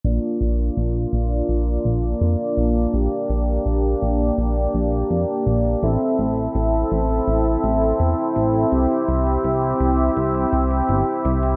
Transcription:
0.04 analog synth bass A#1, supersaw synth A#3 D4 F4 D5, closed hi-hat
0.41 analog synth bass A#1, closed hi-hat
0.59 closed hi-hat
0.77 analog synth bass A#1, closed hi-hat
1.13 analog synth bass A#1, closed hi-hat
1.31 closed hi-hat
1.49 analog synth bass A#1, closed hi-hat
1.67 closed hi-hat
1.85 analog synth bass A#1, closed hi-hat
2.03 closed hi-hat
2.21 analog synth bass F2, closed hi-hat
2.57 analog synth bass A#1, closed hi-hat
2.76 closed hi-hat
2.93 analog synth bass A#1, supersaw synth G4, closed hi-hat
3.30 analog synth bass A#1, closed hi-hat
3.48 closed hi-hat
3.66 analog synth bass A#1, closed hi-hat
4.02 analog synth bass A#1, closed hi-hat
4.20 closed hi-hat
4.38 analog synth bass A#1, closed hi-hat
4.56 closed hi-hat
4.74 analog synth bass A#1, closed hi-hat
4.92 closed hi-hat
5.10 analog synth bass F2, closed hi-hat
5.46 analog synth bass A#1, closed hi-hat
5.65 closed hi-hat
5.83 analog synth bass A1, supersaw synth C4 E4 A4 E5, closed hi-hat
6.19 analog synth bass A1, closed hi-hat
6.37 closed hi-hat
6.55 analog synth bass A1, closed hi-hat
6.91 analog synth bass A1, closed hi-hat
7.09 closed hi-hat
7.27 analog synth bass A1, closed hi-hat
7.46 closed hi-hat
7.64 analog synth bass A1, closed hi-hat
7.82 closed hi-hat
8.00 analog synth bass E2, closed hi-hat
8.36 analog synth bass A1, closed hi-hat
8.54 closed hi-hat
8.72 analog synth bass C2, supersaw synth G4 E5, closed hi-hat
9.08 analog synth bass C2, closed hi-hat
9.26 closed hi-hat
9.44 analog synth bass C2, closed hi-hat
9.80 analog synth bass C2, closed hi-hat
9.99 closed hi-hat
10.17 analog synth bass C2, closed hi-hat
10.35 closed hi-hat
10.53 analog synth bass C2, closed hi-hat
10.71 closed hi-hat
10.89 analog synth bass G1, closed hi-hat
11.25 analog synth bass C2, closed hi-hat
11.43 closed hi-hat

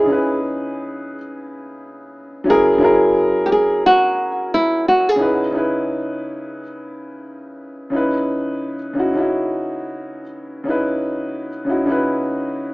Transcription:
Already playing: upright piano C#3 C#4 D#4 E4 G#4, nylon-string guitar G#4
0.06 upright piano C#3 C#4 D#4
0.10 upright piano E4 B4
2.44 upright piano F#3 C#4 E4
2.49 upright piano G#4 A#4, nylon-string guitar G#4
2.78 upright piano F#3 C#4 E4
2.83 upright piano G#4 A#4
3.46 nylon-string guitar G4
3.52 nylon-string guitar G#4
3.86 nylon-string guitar F#4
4.54 nylon-string guitar E4
4.88 nylon-string guitar F#4
5.09 nylon-string guitar G#4
5.16 upright piano C#3 C#4 D#4
5.20 upright piano E4 B4
5.51 upright piano C#3 C#4 D#4
5.56 upright piano E4 B4
7.90 upright piano C#3 C#4 D#4
7.94 upright piano E4 B4
8.93 upright piano C#3 C#4 D#4
8.98 upright piano E4 F#4
9.14 upright piano C#3 C#4 D#4
9.18 upright piano E4 F#4
10.64 upright piano C#3 C#4 D#4
10.69 upright piano E4 B4
11.65 upright piano C#3 C#4 D#4
11.69 upright piano E4 F#4
11.86 upright piano C#3 C#4 D#4
11.90 upright piano E4 B4

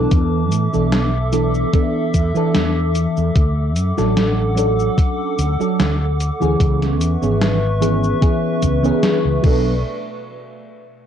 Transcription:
Already playing: fm electric piano E3 B3 D4 A4, ambient pad D6
0.11 fretless electric bass E2, ambient pad A4 E5, kick, closed hi-hat, cabasa
0.52 fretless electric bass A2, closed hi-hat, cabasa
0.73 fretless electric bass B1, fm electric piano E3 B3 D4 A4, cabasa
0.92 snare, closed hi-hat, cabasa
1.32 fm electric piano E3 B3 D4 A4, closed hi-hat, cabasa
1.55 cabasa
1.73 fm electric piano E3 B3 D4 A4, kick, closed hi-hat, cabasa
2.14 fretless electric bass E2, kick, closed hi-hat, cabasa
2.34 fm electric piano E3 B3 D4 A4, muted fretless electric bass stroke, cabasa
2.55 fretless electric bass E2, snare, closed hi-hat, cabasa
2.95 closed hi-hat, cabasa
3.17 fretless electric bass E2, cabasa
3.35 fretless electric bass D2, ambient pad A4 F#5 D6, kick, closed hi-hat, cabasa
3.76 fretless electric bass F#2, closed hi-hat, cabasa
3.97 fretless electric bass A1, fm electric piano F#3 C#4 D4 A4, snare, cabasa
4.17 snare, closed hi-hat, cabasa
4.55 fm electric piano F#3 C#4 D4 A4, closed hi-hat, cabasa
4.80 cabasa
4.98 kick, closed hi-hat, cabasa
5.38 fretless electric bass D2, closed hi-hat, cabasa
5.59 fm electric piano F#3 C#4 D4 A4, cabasa
5.80 fretless electric bass D2, snare, closed hi-hat, cabasa
6.20 closed hi-hat, cabasa
6.40 fretless electric bass D2, fm electric piano E3 B3 C#4 G#4, cabasa
6.60 fretless electric bass C#2, ambient pad B4 E5 C#6, kick, closed hi-hat, cabasa
6.82 snare, closed hi-hat
7.01 fretless electric bass E2, closed hi-hat, cabasa
7.21 fretless electric bass G#1, fm electric piano E3 B3 C#4 G#4, cabasa
7.41 snare, closed hi-hat, cabasa
7.80 fm electric piano E3 B3 C#4 G#4, closed hi-hat, cabasa
8.04 cabasa
8.21 fm electric piano E3 B3 C#4 G#4, kick, closed hi-hat, cabasa
8.62 fretless electric bass C#2, kick, closed hi-hat, cabasa
8.82 fm electric piano E3 B3 C#4 G#4, cabasa
9.03 snare, closed hi-hat, cabasa
9.25 fretless electric bass C#2
9.42 fretless electric bass B1, fm electric piano F#3 B3 D4, kick, crash
9.46 fm electric piano A4

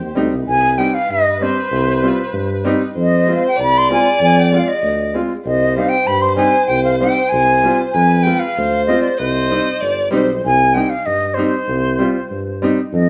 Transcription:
Already playing: violin G4, flute C5
0.01 tuba D#2
0.15 tuba D2, upright piano G3 C4 D#4
0.32 tuba C2
0.46 tuba C2, violin B4, flute G#5
0.78 upright piano G3 C4 D#4, flute G5
0.89 flute G5
0.94 flute F5
1.09 tuba G2, flute D#5
1.41 upright piano G3 C4 D4, flute C5
1.71 tuba C2
2.03 upright piano G3 C4 F4
2.33 tuba G2
2.65 upright piano G3 C4 D#4
2.95 tuba F2, violin C5
3.01 flute D#5
3.26 upright piano G#3 C4 F4
3.34 flute F5
3.48 flute G5
3.56 tuba C2, violin D5
3.62 flute B5
3.78 flute C6
3.89 upright piano G#3 C4 F4, flute G#5
4.20 tuba F2, flute G#5
4.39 flute G5
4.52 upright piano G#3 C4 F4, flute F5
4.68 flute D#5
4.82 tuba D2
5.14 upright piano G#3 C4 F4
5.45 tuba C2, violin C5, flute D#5
5.76 upright piano G3 C4 D#4, flute F5
5.89 flute G5
6.07 tuba G2, flute B5
6.22 flute C6
6.36 upright piano G3 C4 D#4, flute G#5
6.67 tuba C2, flute G5
6.84 flute F5
7.00 upright piano G3 C4 D#4, flute G5
7.29 tuba C2, flute G#5
7.63 upright piano G3 C4 F4
7.91 tuba F2, violin B4, flute G#5
8.23 upright piano G#3 C4, flute G5
8.27 upright piano F4
8.39 flute F5
8.56 tuba D2, violin C5
8.87 upright piano G#3 C4 F4, flute D#5
9.02 flute D5
9.17 tuba C2, flute C5, violin D#5
9.50 upright piano G3 C4 D#4
9.80 tuba G1, violin D5
10.11 tuba B1, upright piano G3 C4 D#4, violin C5
10.44 tuba C2, flute G#5
10.74 upright piano G3 C4 D#4, flute G5
10.90 flute F5
11.06 tuba G2, flute D#5
11.34 upright piano G3 C4, flute C5
11.39 upright piano D#4
11.68 tuba C2
11.99 upright piano G3 C4 F4
12.30 tuba G2
12.62 upright piano G3 C4 D#4
12.93 tuba F2, flute D#5

